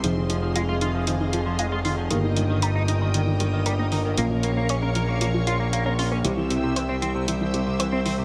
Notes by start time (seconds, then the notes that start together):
Already playing: C6
0.04 F1 D#3 F3 C4 D#4 F4 G#4 D#5 F5, closed hi-hat
0.17 D#3
0.30 F3, closed hi-hat
0.43 F3
0.56 G#3 F4, closed hi-hat
0.69 G#3 F4
0.81 D#3 F4, closed hi-hat
0.95 F3
1.07 D#3 F3, closed hi-hat
1.21 D#3
1.33 F3, closed hi-hat
1.46 F3
1.59 G#3 F4, closed hi-hat
1.72 G#3 F4
1.85 D#3 F4, open hi-hat
1.98 F3
2.11 G1 G2 D#3 A#3 D#4 G4 A#4 G5 D#6, closed hi-hat
2.24 D#3
2.36 D#3 G3, closed hi-hat
2.50 D#3
2.62 G3 A#4, closed hi-hat
2.75 A#3 D#4
2.88 D#3 D#4, closed hi-hat
3.02 D#3
3.14 D#3, closed hi-hat
3.27 D#3
3.40 D#3 G3, closed hi-hat
3.53 D#3
3.66 G3 A#4, closed hi-hat
3.79 A#3 D#4
3.92 D#3 D#4, open hi-hat
4.05 D#3
4.17 A#1 A#2 F3 A#3 C#4 F4 A#4 C#5 F5 C#6, closed hi-hat
4.31 F3
4.43 A#3, closed hi-hat
4.57 A#3
4.69 C#4 C#5, closed hi-hat
4.82 C#4 A#4
4.95 F3 A#4, closed hi-hat
5.08 A#3
5.21 F3 A#3, closed hi-hat
5.34 F3
5.47 F4, closed hi-hat
5.60 A#3
5.73 A#3 F5, closed hi-hat
5.86 C#4 A#4
5.99 C#4 F4, open hi-hat
6.12 A#3 C#4
6.24 C2 C3 E3 G3 C4 E4 G4 C5 E5 G5 E6, closed hi-hat
6.37 E3
6.50 C3 G3, closed hi-hat
6.63 C3
6.76 E3 C5, closed hi-hat
6.89 C4
7.02 E3 C4, closed hi-hat
7.15 C3
7.28 C3 E3, closed hi-hat
7.41 E3
7.54 C3 G3, closed hi-hat
7.66 C3
7.79 E3 C5, closed hi-hat
7.92 C4
8.05 E3 C4, open hi-hat
8.18 C3